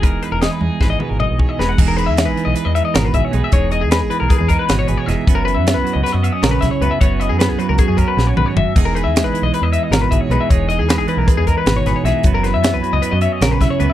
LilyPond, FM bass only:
\new Staff \with { instrumentName = "FM bass" } { \clef bass \time 9/8 \key e \lydian \tempo 4. = 103 e,,8 r16 e,,8 r16 e,16 r16 gis,,8 r16 gis,,8 b,,8 r16 e,,8 | e,,8. e,8 gis,,16 r16 b,,16 r16 e,8 r16 gis,,8 gis,,16 r16 b,,16 r16 | e,,8. e,8 gis,,16 r16 b,,16 r16 e,8 r16 gis,,8 gis,,16 r16 f,,16 r16 | fis,,8. fis,8 b,,16 r16 cis,16 r16 fis,8 r16 ais,,8 b,,16 r16 cis,16 r16 |
fis,,8. fis,8 b,,16 r16 cis,16 r16 fis,8 r16 ais,,8 b,,16 r16 fis,,16 r16 | e,,8. e,8 gis,,16 r16 b,,16 r16 e,8 r16 gis,,8 gis,,16 r16 b,,16 r16 | e,,8. e,8 gis,,16 r16 b,,16 r16 e,8 r16 gis,,8 gis,,16 r16 b,,16 r16 | fis,,8. fis,8 b,,16 r16 cis,16 r16 fis,8 r16 ais,,8 b,,16 r16 cis,16 r16 | }